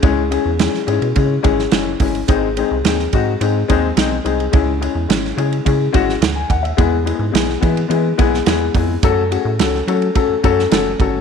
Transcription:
<<
  \new Staff \with { instrumentName = "Upright piano" } { \time 4/4 \key cis \minor \tempo 4 = 107 << { r1 | r1 | r2. r16 gis''16 fis''16 e''16~ | e''16 r2. r8. |
r1 | } \\ { <gis cis' e' gis'>8 <gis cis' e' gis'>8 <gis cis' e' gis'>8 <gis cis' e' gis'>8 <gis cis' e' gis'>8 <gis cis' e' gis'>8 <gis cis' e' gis'>8 <gis cis' e' gis'>8 | <gis bis dis' gis'>8 <gis bis dis' gis'>8 <gis bis dis' gis'>8 <gis bis dis' fis'>8 <gis bis dis' gis'>8 <gis bis dis' gis'>8 <gis bis dis' gis'>8 <gis bis dis' gis'>8 | <gis cis' e' gis'>8 <gis cis' e' gis'>8 <gis cis' e' gis'>8 <gis cis' e' gis'>8 <gis cis' e' gis'>8 <gis cis' e' fis'>8 r4 | <gis b e' gis'>8 <gis b e' gis'>8 <gis b e' gis'>8 <gis b e' gis'>8 <gis b e' gis'>8 <gis b e' gis'>8 <gis b e' gis'>8 <gis b e' gis'>8 |
<a cis' fis' a'>8 <a cis' fis' gis'>8 <a cis' fis' a'>8 <a cis' fis' a'>8 <a cis' fis' a'>8 <a cis' fis' a'>8 <a cis' fis' a'>8 <a cis' fis' a'>8 | } >> }
  \new Staff \with { instrumentName = "Analog synth bass" } { \clef bass \time 4/4 \key cis \minor cis,8. e,8 r16 gis,16 b,16 cis8 gis,,8 fis,,8 g,,8 | gis,,8. bis,,16 dis,8 gis,8 gis,8 dis,8 b,,8 bis,,8 | cis,8. e,16 gis,,8 cis8 cis8 gis,,8 d,8 dis,8 | e,8. gis,16 b,,8 e8 e8 b,,8 e,8 eis,8 |
fis,8. a,16 cis,8 fis8 r16 fis,16 fis,8 fis,,8 g,,8 | }
  \new DrumStaff \with { instrumentName = "Drums" } \drummode { \time 4/4 <bd cymr>8 cymr8 <cymr sn>16 sn16 cymr16 cymr16 <bd cymr>8 <bd cymr>16 sn16 <cymr sn>8 <hho bd cymr>16 cymr16 | <hhp bd cymr>8 cymr8 <cymr sn>16 sn16 <bd cymr>8 cymr8 <bd cymr>8 <cymr sn>8 cymr16 cymr16 | <bd cymr>8 cymr8 <cymr sn>16 sn16 cymr16 cymr16 <bd cymr>8 <bd cymr>16 sn16 <cymr sn>8 <bd cymr>16 cymr16 | <bd cymr>8 cymr8 <cymr sn>16 sn16 <bd cymr>16 cymr16 cymr8 <bd cymr>16 sn16 <cymr sn>8 <hho bd cymr>8 |
<hhp bd cymr>8 cymr8 <cymr sn>16 sn16 cymr16 cymr16 <bd cymr>8 <bd cymr>16 sn16 <cymr sn>8 <bd cymr>8 | }
>>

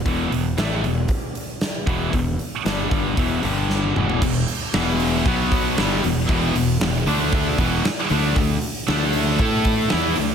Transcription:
<<
  \new Staff \with { instrumentName = "Distorted electric guitar" } { \clef bass \time 4/4 \key e \minor \tempo 4 = 116 <e, b, e>8 <e, b,>8 <a, e a>8 <e, b,>8 r4. <e, b, e>8 | <e, b,>8 r8 <g, d g>8 <g, d g>8 <e, b, e>8 <g, d g>4 <e, b, e>8 | <e, b,>8 r8 <e, b, e>4 <b, fis b>4 <g, d g>8 <e, b,>8 | <e, b, e>8 <e, b,>8 <e, b,>8 <d a d'>4 <e, b, e>8 r8 <d a d'>8 |
<d a>8 r8 <d a d'>4 <a e' a'>4 <e b e'>8 <d a>8 | }
  \new Staff \with { instrumentName = "Distorted electric guitar" } { \clef bass \time 4/4 \key e \minor <e, b, e>8 <e, b,>8 <a, e a>8 <e, b,>8 r4. <e, b, e>8 | <e, b,>8 r8 <g, d g>8 <g, d g>8 <e, b, e>8 <g, d g>4 <e, b, e>8 | <e, b,>8 r8 <e, b, e>4 <b, fis b>4 <g, d g>8 <e, b,>8 | <e, b, e>8 <e, b,>8 <e, b,>8 <d a d'>4 <e, b, e>8 r8 <d a d'>8 |
<d a>8 r8 <d a d'>4 <a e' a'>4 <e b e'>8 <d a>8 | }
  \new Staff \with { instrumentName = "Distorted electric guitar" } { \clef bass \time 4/4 \key e \minor r1 | r1 | <e, b,>8 r8 <e, b, e>4 <b, fis b>4 <g, d g>8 <e, b,>8 | <e, b, e>8 <e, b,>8 <e, b,>8 <d a d'>4 <e, b, e>8 r8 <d a d'>8 |
<d a>8 r8 <d a d'>4 <a e' a'>4 <e b e'>8 <d a>8 | }
  \new Staff \with { instrumentName = "Fingered electric bass" } { \clef bass \time 4/4 \key e \minor e,,8 e,,8 a,,8 e,,8 r4. e,,8 | e,,8 r8 g,,8 g,,8 e,,8 g,,4 e,,8 | e,,8 r8 e,,4 b,,4 g,,8 e,,8 | e,,8 e,,8 e,,8 d,4 e,,8 r8 d,8 |
d,8 r8 d,4 a,4 e,8 d,8 | }
  \new DrumStaff \with { instrumentName = "Drums" } \drummode { \time 4/4 <hho bd>8 hho8 <hho sn>8 hho8 <hho bd>8 hho8 <hho sn>8 <hho bd>8 | <hho bd>8 hho8 <hho sn>8 <hho bd>8 <hho bd>8 hho8 sn16 tommh16 toml16 tomfh16 | <cymc bd>8 hho8 <hho sn>8 hho8 <hho bd>8 <hho bd>8 <hho sn>8 hho8 | <hho bd>8 hho8 <hho sn>8 hho8 <hho bd>8 <hho bd>8 <hho sn>8 hho8 |
<hho bd>8 hho8 <hho sn>8 hho8 <hho bd>8 <hho bd>8 <hho sn>8 hho8 | }
>>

